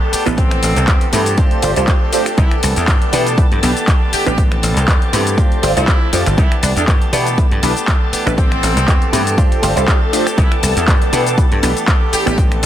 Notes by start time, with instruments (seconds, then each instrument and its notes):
Already playing: string machine A4 A5
0.01 clean electric guitar D4 G4
0.12 clean electric guitar B3 D4 G4, muted slap bass stroke, open hi-hat, shaker
0.26 slap bass A1, analog polysynth B3 D4 E4 G4 B4, clean electric guitar G4, finger snap, closed hi-hat, shaker
0.37 clean electric guitar E3 B3 C4 G4, horn section C4, kick, closed hi-hat, shaker
0.51 finger snap, closed hi-hat
0.63 slap bass A1, open hi-hat, shaker
0.76 slap bass C2, clean electric guitar B3 C4 G4, closed hi-hat, shaker
0.87 clean electric guitar E3 B3 C4 G4, kick, clap, closed hi-hat, shaker
1.01 closed hi-hat
1.12 slap bass G2, clean electric guitar E3 B3 C4 G4, analog polysynth A3 C4 E4 G4 B4, open hi-hat, shaker
1.26 closed hi-hat, shaker
1.37 analog polysynth A3 D4 F4 G4 C5, clean electric guitar G4, kick, closed hi-hat, shaker
1.51 muted slap bass stroke, closed hi-hat
1.62 slap bass G1, clean electric guitar F3 C4 D4 G4, analog polysynth A3 D4 F4 G4 C5, open hi-hat, shaker
1.76 slap bass C2, analog polysynth A3 D4 F4 G4 C5, clean electric guitar C4 D4 G4, closed hi-hat, shaker
1.88 clean electric guitar F3 C4 D4 G4, analog polysynth D4 C5, kick, clap, closed hi-hat, shaker
2.01 clean electric guitar C4 D4 G4
2.12 clean electric guitar F3 C4 D4 G4, analog polysynth A3 D4 F4 G4 C5, open hi-hat, shaker
2.26 clean electric guitar C4 D4 G4, finger snap, closed hi-hat, shaker
2.38 slap bass C2, clean electric guitar E3 B3 D4 G4, horn section E4, kick, closed hi-hat, shaker
2.51 finger snap, closed hi-hat
2.63 slap bass C2, open hi-hat, shaker
2.76 slap bass E2, clean electric guitar B3 D4 G4, closed hi-hat, shaker
2.88 clean electric guitar E3 D4 G4, kick, clap, closed hi-hat, shaker
3.02 closed hi-hat
3.12 slap bass B2, clean electric guitar E3 B3 D4 G4, analog polysynth B3 D4 E4 G4 B4, open hi-hat, shaker
3.27 closed hi-hat, shaker
3.38 analog polysynth B3 D4 E4 G4 B4, kick, closed hi-hat, shaker
3.52 slap bass G2, closed hi-hat
3.62 slap bass B1, clean electric guitar E3 B3 D4 G4, analog polysynth B3 D4 E4 G4 B4, open hi-hat, shaker
3.77 closed hi-hat, shaker
3.88 clean electric guitar E3 D4 G4, kick, clap, closed hi-hat, shaker
4.01 clean electric guitar B3 D4 G4
4.13 clean electric guitar E3 B3 D4 G4, horn section G4, muted slap bass stroke, open hi-hat, shaker
4.26 slap bass A1, analog polysynth B3 D4 E4 G4 B4, horn section G4, finger snap, shaker
4.37 clean electric guitar E3 B3 C4 G4, kick, closed hi-hat, shaker
4.52 finger snap, closed hi-hat
4.63 slap bass A1, open hi-hat, shaker
4.76 slap bass C2, clean electric guitar B3 C4 G4, closed hi-hat, shaker
4.88 slap bass E2, clean electric guitar E3 B3 C4 G4, kick, clap, closed hi-hat, shaker
5.02 closed hi-hat
5.12 slap bass G2, clean electric guitar E3 B3 C4 G4, analog polysynth A3 C4 E4 G4 B4, open hi-hat, shaker
5.27 closed hi-hat, shaker
5.37 analog polysynth A3 D4 F4 G4 C5, clean electric guitar C4 D4 G4, kick, closed hi-hat, shaker
5.52 muted slap bass stroke, closed hi-hat
5.62 slap bass G1, clean electric guitar F3 C4 D4 G4, analog polysynth A3 D4 F4 G4 C5, open hi-hat, shaker
5.76 slap bass C2, analog polysynth A3 D4 F4 G4 C5, clean electric guitar C4 D4 G4, horn section E4, closed hi-hat, shaker
5.88 clean electric guitar F3 C4 D4 G4, analog polysynth A3 D4 F4 G4 C5, kick, clap, closed hi-hat, shaker
6.01 clean electric guitar C4 D4 G4
6.12 slap bass F2, clean electric guitar F3 C4 D4 G4, analog polysynth A3 D4 F4 G4 C5, open hi-hat, shaker
6.26 slap bass G1, clean electric guitar C4 D4 G4, finger snap, closed hi-hat, shaker
6.37 clean electric guitar E3 B3 D4 G4, horn section E4, string machine A4 A5, kick, closed hi-hat, shaker
6.52 finger snap, closed hi-hat
6.63 slap bass C2, horn section D4, open hi-hat, shaker
6.76 slap bass E2, clean electric guitar B3 D4 G4, horn section D4, closed hi-hat, shaker
6.87 slap bass G2, clean electric guitar E3 B3 D4 G4, kick, clap, closed hi-hat, shaker
7.02 closed hi-hat
7.12 slap bass B2, clean electric guitar E3 B3 D4 G4, analog polysynth B3 D4 E4 G4 B4, open hi-hat, shaker
7.27 closed hi-hat, shaker
7.38 analog polysynth B3 D4 E4 G4 B4, kick, closed hi-hat, shaker
7.51 slap bass G2, closed hi-hat
7.62 slap bass B1, clean electric guitar E3 B3 D4 G4, analog polysynth B3 D4 E4 G4 B4, open hi-hat, shaker
7.76 clean electric guitar B3 D4 G4, closed hi-hat, shaker
7.87 clean electric guitar E3, kick, clap, closed hi-hat, shaker
8.01 clean electric guitar B3 D4 G4
8.12 clean electric guitar E3 B3 D4 G4, muted slap bass stroke, open hi-hat, shaker
8.26 slap bass A1, analog polysynth B3 D4 E4 G4 B4, clean electric guitar B3 G4, finger snap, closed hi-hat, shaker
8.37 clean electric guitar E3 B3 C4 G4, horn section C4, kick, closed hi-hat, shaker
8.52 finger snap, closed hi-hat
8.63 slap bass A1, open hi-hat, shaker
8.76 slap bass C2, clean electric guitar B3 C4 G4, closed hi-hat, shaker
8.88 slap bass E2, clean electric guitar E3 B3 C4 G4, kick, clap, closed hi-hat, shaker
9.02 closed hi-hat
9.12 slap bass G2, clean electric guitar E3 B3 C4 G4, analog polysynth A3 C4 E4 G4 B4, open hi-hat, shaker
9.27 closed hi-hat, shaker
9.37 clean electric guitar F3 C4 D4 G4, analog polysynth A3 D4 F4 G4 C5, kick, closed hi-hat, shaker
9.52 muted slap bass stroke, closed hi-hat
9.62 slap bass G1, clean electric guitar F3 C4 D4 G4, analog polysynth A3 D4 F4 G4 C5, open hi-hat, shaker
9.76 slap bass C2, analog polysynth A3 D4 F4 G4 C5, clean electric guitar C4 D4 G4, closed hi-hat, shaker
9.87 clean electric guitar F3 C4 D4 G4, analog polysynth A3 D4 F4 G4 C5, kick, clap, closed hi-hat, shaker
10.01 clean electric guitar C4 D4 G4
10.12 clean electric guitar F3 C4 D4 G4, analog polysynth A3 D4 F4 G4 C5, open hi-hat, shaker
10.26 clean electric guitar C4 D4 G4, finger snap, closed hi-hat, shaker
10.37 slap bass C2, clean electric guitar E3 B3 D4 G4, horn section E4, kick, closed hi-hat, shaker
10.52 finger snap, closed hi-hat
10.63 slap bass C2, open hi-hat, shaker
10.76 slap bass E2, clean electric guitar B3 D4 G4, closed hi-hat, shaker
10.88 slap bass G2, clean electric guitar E3 B3 D4 G4, kick, clap, closed hi-hat, shaker
11.02 closed hi-hat
11.12 slap bass B2, clean electric guitar E3 B3 D4 G4, analog polysynth B3 D4 E4 G4 B4, open hi-hat, shaker
11.27 closed hi-hat, shaker
11.37 analog polysynth B3 D4 E4 G4 B4, kick, closed hi-hat, shaker
11.52 slap bass G2, closed hi-hat
11.62 slap bass B1, clean electric guitar E3 B3 D4 G4, analog polysynth B3 D4 E4 G4 B4, open hi-hat, shaker
11.77 closed hi-hat, shaker
11.88 clean electric guitar D4 G4, kick, clap, closed hi-hat, shaker
12.01 clean electric guitar B3 D4 G4
12.12 clean electric guitar E3 B3 D4 G4, horn section G4, muted slap bass stroke, open hi-hat, shaker
12.26 slap bass A1, analog polysynth B3 D4 E4 G4 B4, clean electric guitar B3 D4 G4, horn section G4, finger snap, closed hi-hat, shaker
12.38 clean electric guitar E3 B3 C4 G4, kick, closed hi-hat, shaker
12.52 finger snap, closed hi-hat
12.63 slap bass A1, open hi-hat